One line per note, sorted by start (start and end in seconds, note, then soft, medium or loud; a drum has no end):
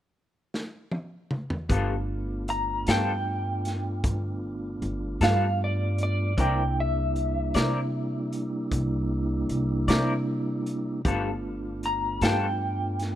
0.54 snare medium
0.92 high tom medium
1.31 mid tom medium
1.50 floor tom medium
1.69 2.82 G1 medium
1.69 1.93 G3 medium
1.69 6.34 A3 soft
1.69 6.34 B3 medium
1.69 1.93 B3 medium
1.69 6.34 D4 medium
1.69 6.34 F4 medium
1.69 1.94 F4 medium
1.69 1.94 A4 medium
1.69 kick medium
1.69 closed hi-hat medium
2.48 2.87 A#5 medium
2.48 closed hi-hat medium
2.87 4.00 G2 medium
2.87 3.12 G3 soft
2.87 3.12 B3 medium
2.87 3.11 F4 medium
2.87 3.11 A4 medium
2.87 5.19 G5 medium
2.87 snare medium
2.87 closed hi-hat medium
3.65 snare soft
3.65 closed hi-hat medium
4.04 4.78 G1 medium
4.04 kick medium
4.04 closed hi-hat medium
4.82 5.18 G1 medium
4.82 closed hi-hat soft
5.21 6.34 G2 medium
5.21 5.46 G3 medium
5.21 5.45 B3 soft
5.21 5.45 F4 medium
5.21 5.44 A4 medium
5.21 5.60 F5 medium
5.21 snare loud
5.21 closed hi-hat medium
5.64 6.00 D5 medium
5.98 closed hi-hat medium
6.03 6.39 D5 medium
6.37 7.51 C2 medium
6.37 11.02 G3 medium
6.37 11.02 A#3 medium
6.37 6.61 C4 medium
6.37 11.02 D4 medium
6.37 6.61 E4 medium
6.37 11.01 E4 medium
6.37 6.62 A#4 medium
6.37 6.62 D5 medium
6.37 6.77 G5 medium
6.37 kick medium
6.37 closed hi-hat medium
6.80 8.30 E5 medium
7.16 closed hi-hat soft
7.54 8.68 C3 medium
7.54 7.79 C4 medium
7.54 7.79 E4 medium
7.54 7.79 A#4 medium
7.54 7.78 D5 medium
7.54 snare medium
7.54 closed hi-hat medium
8.32 closed hi-hat soft
8.71 9.45 C2 medium
8.71 kick medium
8.71 closed hi-hat medium
9.49 9.85 C2 medium
9.49 closed hi-hat medium
9.88 11.01 C3 medium
9.88 10.13 C4 medium
9.88 10.13 E4 medium
9.88 10.12 A#4 medium
9.88 10.12 D5 medium
9.88 snare loud
9.88 closed hi-hat medium
10.66 closed hi-hat soft
11.05 12.18 G1 medium
11.05 11.28 G3 medium
11.05 13.15 A3 medium
11.05 11.29 B3 medium
11.05 13.15 B3 medium
11.05 13.15 D4 medium
11.05 13.15 F4 medium
11.05 11.29 F4 medium
11.05 11.30 A4 medium
11.05 kick medium
11.05 closed hi-hat medium
11.83 12.22 A#5 medium
11.83 closed hi-hat soft
12.21 13.15 G2 medium
12.21 12.46 G3 medium
12.21 12.46 B3 soft
12.21 12.46 F4 medium
12.21 12.45 A4 medium
12.21 13.15 G5 medium
12.21 snare loud
12.21 closed hi-hat medium
12.99 snare soft
12.99 closed hi-hat medium